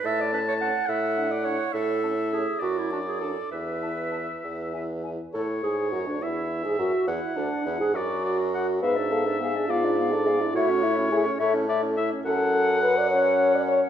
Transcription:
<<
  \new Staff \with { instrumentName = "Flute" } { \time 6/8 \key a \major \tempo 4. = 69 r8 a''8 a''8 r8 fis''8 fis''8 | r8 a''8 a''8 r8 a''8 a''8 | r8 a''8 a''8 r8 gis''8 gis''8 | a'8 gis'8 fis'16 d'16 e'8. gis'16 fis'8 |
e'8 d'8 e'16 gis'16 fis'4. | eis''16 d''16 eis''16 d''16 eis''16 d''16 eis''16 d''16 eis''16 d''16 eis''16 d''16 | e''16 cis''16 e''16 cis''16 e''16 cis''16 e''16 cis''16 e''16 cis''16 e''16 cis''16 | \key fis \minor fis''4. fis''4. | }
  \new Staff \with { instrumentName = "Oboe" } { \time 6/8 \key a \major a''4. fis''4. | e''4. d''4. | e''2~ e''16 r8. | cis''4. e''4. |
fis''4. d''8 d''8 fis''8 | e''4. d''4. | cis''4. cis''8 d''8 e''8 | \key fis \minor fis''2~ fis''8 r8 | }
  \new Staff \with { instrumentName = "French horn" } { \time 6/8 \key a \major r8 cis'8 cis'8 r8 d'8 d'8 | r8 cis'8 cis'8 r8 d'8 d'8 | r8 e'8 e'8 r8 e'8 e'8 | a'8 gis'8 fis'16 d'16 e'8. gis'16 fis'8 |
e'8 d'8 e'16 gis'16 fis'4. | b'8 a'8 gis'8 eis'8. a'16 gis'16 e'16 | fis'8 e'8 gis'8 a'4 r8 | \key fis \minor a'4 b'16 d''16 cis''8. d''16 cis''8 | }
  \new Staff \with { instrumentName = "Clarinet" } { \time 6/8 \key a \major e''16 d''16 b'16 cis''16 fis''8 e''8. d''16 cis''8 | a'4 gis'8 fis'16 e'16 fis'16 gis'16 a'8 | b'2~ b'8 r8 | a'8 gis'8 fis'16 d'16 e'8. gis'16 fis'8 |
e'8 d'8 e'16 gis'16 fis'4. | b16 d'16 b16 d'16 b16 d'16 b16 d'16 b16 d'16 b16 d'16 | e'16 cis'16 e'16 cis'16 e'16 cis'16 e'16 cis'16 e'16 cis'16 e'16 cis'16 | \key fis \minor cis'4. cis'4. | }
  \new Staff \with { instrumentName = "Bassoon" } { \clef bass \time 6/8 \key a \major a,4. a,4. | a,4. fis,4. | e,4. e,4. | a,8 gis,8 fis,16 d,16 e,8. gis,16 fis,8 |
e,8 d,8 e,16 gis,16 fis,4. | gis,4. gis,4. | a,4. a,4. | \key fis \minor fis,2. | }
>>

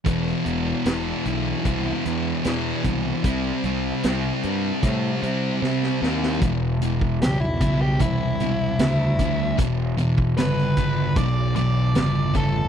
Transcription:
<<
  \new Staff \with { instrumentName = "Lead electric guitar" } { \time 4/4 \key e \minor \tempo 4 = 76 r1 | r1 | r4 g'16 e'8 g'16 e'2 | r4 b'4 d''8 d''4 a'8 | }
  \new Staff \with { instrumentName = "Distorted electric guitar" } { \clef bass \time 4/4 \key e \minor <e, b, e>8 <e, b, e>8 <e, b, e>8 <e, b, e>8 <e, b, e>8 <e, b, e>8 <e, b, e>8 <e, b, e>8 | <c g c'>8 <c g c'>8 <c g c'>8 <c g c'>8 <c g c'>8 <c g c'>8 <c g c'>8 <c g c'>8 | <e, b,>8 <e, b,>8 <e, cis>8 <e, cis>8 <e, b,>8 <e, b,>8 <e, cis>8 <e, cis>8 | <e, b,>8 <e, b,>8 <e, cis>8 <e, cis>8 <e, b,>8 <e, b,>8 <e, cis>8 <e, cis>8 | }
  \new Staff \with { instrumentName = "Picked electric bass" } { \clef bass \time 4/4 \key e \minor e,,8 e,,8 e,,8 b,,8 c,8 e,8 e,8 c,8 | c,8 c,8 c,8 g,8 a,8 c8 c8 dis,8 | e,,4 b,,8 b,,8 c,8 c,8 d,8 d,8 | e,,8 e,,8 g,,8 g,,8 b,,8 b,,8 g,,8 g,,8 | }
  \new DrumStaff \with { instrumentName = "Drums" } \drummode { \time 4/4 <hh bd>16 sn16 hh8 <hh sn>8 hh8 <hh bd>8 hh8 <hh sn>8 <hh bd>8 | <hh bd>8 hh8 <hh sn>8 hh8 <hh bd>8 hh8 sn16 sn16 sn16 sn16 | <hh bd>8 hh16 bd16 <hh sn>8 <hh bd>8 <hh bd>8 hh8 <hh sn>8 <hh bd>8 | <hh bd>8 hh16 bd16 <hh sn>16 sn16 <hh bd>8 <hh bd>8 hh8 <hh sn>8 <hh bd>8 | }
>>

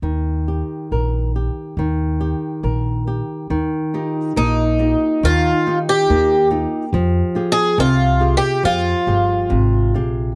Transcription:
<<
  \new Staff \with { instrumentName = "Nylon-string guitar" } { \time 2/4 \key ees \major \tempo 4 = 70 ees8 g'8 bes'8 g'8 | ees8 g'8 bes'8 g'8 | ees8 <ees' f' g'>8 bes8 <ees' f' g'>8 | ees8 <ees' f' g'>8 bes8 <ees' f' g'>8 |
f8 <f' g' aes'>8 c8 <f' g' aes'>8 | f8 <f' g' aes'>8 c8 <f' g' aes'>8 | }
  \new Staff \with { instrumentName = "Twelve-string acoustic guitar" } { \time 2/4 \key ees \major r2 | r2 | r4 ees'4 | f'8. g'8. r8 |
\tuplet 3/2 { r4 aes'8 f'4 g'8 } | f'4. r8 | }
  \new Staff \with { instrumentName = "Upright bass" } { \clef bass \time 2/4 \key ees \major ees,4 bes,,4 | ees,4 bes,,4 | ees,8 r8 bes,,4 | ees,8 r8 ees,4 |
f,8 r8 c,4 | f,8 g,,8 aes,,8 bes,,8 | }
>>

